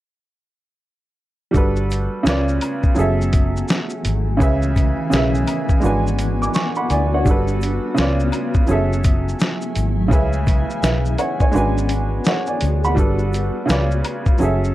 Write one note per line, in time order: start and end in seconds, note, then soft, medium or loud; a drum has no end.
1.51 2.07 G1 loud
1.51 2.21 G3 medium
1.51 2.96 B3 medium
1.51 2.22 D4 medium
1.51 2.23 F#4 medium
1.51 kick loud
1.51 shaker medium
1.55 2.23 A4 medium
1.55 2.24 B4 loud
1.55 shaker medium
1.76 shaker soft
1.90 closed hi-hat medium
1.90 shaker soft
2.23 2.58 C#2 medium
2.23 2.96 C#3 medium
2.23 2.94 C#4 medium
2.23 2.97 F4 medium
2.23 snare loud
2.23 shaker medium
2.28 2.98 B4 medium
2.28 2.99 D5 loud
2.48 shaker soft
2.61 closed hi-hat medium
2.61 high woodblock medium
2.61 shaker soft
2.61 shaker medium
2.83 kick medium
2.83 shaker soft
2.95 3.62 F#1 medium
2.95 4.32 F#3 medium
2.95 4.33 C#4 medium
2.95 4.34 G#4 medium
2.95 shaker medium
2.98 5.81 E3 medium
2.98 4.40 A3 medium
2.98 4.40 F#4 medium
2.98 4.35 A4 medium
2.98 4.35 E5 medium
2.98 7.23 G#5 medium
2.98 shaker medium
3.21 shaker soft
3.33 kick medium
3.33 closed hi-hat medium
3.33 shaker soft
3.57 shaker soft
3.68 shaker medium
3.70 snare loud
3.70 shaker medium
3.90 shaker soft
4.05 4.37 G#1 medium
4.05 closed hi-hat medium
4.05 shaker medium
4.05 shaker soft
4.37 4.92 C#2 loud
4.37 5.07 C#3 medium
4.37 5.08 C#4 medium
4.37 5.82 C#4 medium
4.37 5.08 G#4 medium
4.37 kick loud
4.37 shaker medium
4.41 5.82 B3 medium
4.41 5.09 B4 medium
4.41 5.10 E5 loud
4.41 shaker medium
4.62 shaker soft
4.76 kick loud
4.76 closed hi-hat medium
4.76 shaker soft
5.10 5.44 B1 medium
5.10 5.82 C#3 medium
5.10 5.83 C#4 medium
5.10 5.84 G#4 medium
5.10 snare loud
5.10 shaker medium
5.14 5.83 B4 medium
5.14 5.85 E5 medium
5.35 shaker soft
5.47 closed hi-hat medium
5.47 high woodblock medium
5.47 shaker soft
5.69 kick medium
5.69 shaker soft
5.80 7.18 G#3 medium
5.80 7.25 B3 medium
5.80 7.19 D4 medium
5.80 7.20 F#4 medium
5.80 shaker medium
5.84 6.48 G#1 medium
5.84 7.25 D4 medium
5.84 7.96 F#4 medium
5.84 7.21 B4 medium
5.84 6.20 G#5 medium
5.84 shaker medium
6.07 shaker soft
6.19 closed hi-hat medium
6.19 shaker soft
6.19 shaker medium
6.42 6.53 G#5 medium
6.42 6.54 D6 medium
6.42 shaker soft
6.54 6.76 G#5 medium
6.54 6.75 C#6 medium
6.54 snare loud
6.54 shaker medium
6.75 6.90 F#5 medium
6.75 6.90 B5 medium
6.75 shaker soft
6.90 7.22 D2 medium
6.90 7.12 D5 medium
6.90 7.11 G#5 medium
6.90 closed hi-hat medium
6.90 shaker soft
7.14 7.47 C#5 medium
7.14 7.47 F#5 medium
7.25 7.78 G1 loud
7.25 7.93 G3 medium
7.25 8.67 B3 medium
7.25 7.94 D4 medium
7.25 7.95 F#4 medium
7.25 kick loud
7.25 shaker medium
7.29 7.96 A4 medium
7.29 7.96 B4 loud
7.48 shaker soft
7.61 closed hi-hat medium
7.61 shaker soft
7.63 shaker soft
7.94 8.30 C#2 loud
7.94 8.67 C#3 medium
7.94 8.66 C#4 medium
7.94 8.69 F4 medium
7.94 snare loud
7.94 shaker medium
7.99 8.70 B4 medium
7.99 8.70 D5 medium
8.20 shaker soft
8.32 closed hi-hat medium
8.32 high woodblock medium
8.32 shaker soft
8.54 kick medium
8.54 shaker soft
8.67 10.04 F#3 medium
8.67 10.10 F#3 medium
8.67 10.05 C#4 medium
8.67 10.10 E4 medium
8.67 11.51 G#5 medium
8.67 shaker medium
8.69 9.33 F#1 medium
8.69 10.10 A3 medium
8.69 10.06 G#4 medium
8.69 10.06 A4 medium
8.69 10.07 E5 medium
8.69 shaker medium
8.93 shaker soft
9.04 kick medium
9.04 closed hi-hat medium
9.04 shaker medium
9.04 shaker soft
9.29 shaker soft
9.39 snare loud
9.39 shaker medium
9.61 shaker soft
9.76 10.08 G#1 medium
9.76 closed hi-hat medium
9.76 shaker medium
9.76 shaker soft
10.08 10.63 C#2 loud
10.08 10.78 C#3 medium
10.08 11.53 E3 medium
10.08 14.36 B3 medium
10.08 10.79 C#4 medium
10.08 11.53 C#4 medium
10.08 10.80 G#4 medium
10.08 kick loud
10.08 shaker medium
10.13 10.80 B4 medium
10.13 10.81 E5 medium
10.33 shaker soft
10.47 kick medium
10.47 closed hi-hat medium
10.47 shaker soft
10.70 shaker soft
10.82 11.15 B1 loud
10.82 11.17 B4 medium
10.82 11.17 E5 medium
10.82 snare loud
10.82 shaker medium
11.05 shaker soft
11.18 11.40 C#5 medium
11.18 11.40 F#5 medium
11.18 closed hi-hat medium
11.18 high woodblock medium
11.18 shaker soft
11.18 shaker medium
11.40 11.75 C#5 soft
11.40 11.56 G#5 medium
11.40 kick medium
11.40 shaker medium
11.51 12.18 G#1 loud
11.51 12.89 G#3 medium
11.51 12.90 D4 medium
11.51 12.96 D4 medium
11.51 12.91 F#4 medium
11.51 13.67 F#4 medium
11.51 12.96 G#4 medium
11.51 shaker medium
11.55 12.92 B4 medium
11.55 12.27 G#5 medium
11.55 shaker medium
11.78 shaker soft
11.89 closed hi-hat medium
11.89 shaker soft
11.91 shaker medium
12.25 shaker medium
12.26 12.48 C#5 medium
12.26 12.47 F#5 medium
12.26 snare loud
12.26 shaker medium
12.46 12.82 D5 medium
12.46 12.82 G#5 medium
12.46 shaker soft
12.61 12.94 D2 medium
12.61 closed hi-hat medium
12.61 shaker medium
12.63 shaker soft
12.84 13.18 F#5 medium
12.84 13.18 B5 medium
12.84 shaker soft
12.95 13.49 G1 loud
12.95 13.64 G3 medium
12.95 13.65 D4 medium
12.95 13.66 F#4 medium
12.95 kick loud
12.95 shaker medium
12.99 13.66 A4 medium
12.99 13.67 B4 medium
13.19 shaker soft
13.33 closed hi-hat medium
13.33 shaker soft
13.66 14.01 C#2 loud
13.66 14.39 C#3 medium
13.66 14.38 C#4 medium
13.66 14.40 F4 medium
13.66 shaker medium
13.70 14.41 B4 medium
13.70 14.41 D5 medium
13.70 snare loud
13.91 shaker soft
14.05 closed hi-hat medium
14.05 high woodblock medium
14.05 shaker soft
14.26 kick medium
14.26 shaker soft
14.38 14.75 F#1 medium
14.38 14.75 F#3 medium
14.38 14.75 C#4 medium
14.38 shaker medium
14.41 14.75 E3 medium
14.41 14.75 A3 medium
14.41 14.75 F#4 medium
14.41 14.75 G#4 medium
14.41 14.75 A4 medium
14.41 14.75 E5 medium
14.41 14.75 G#5 medium
14.41 shaker medium
14.64 shaker soft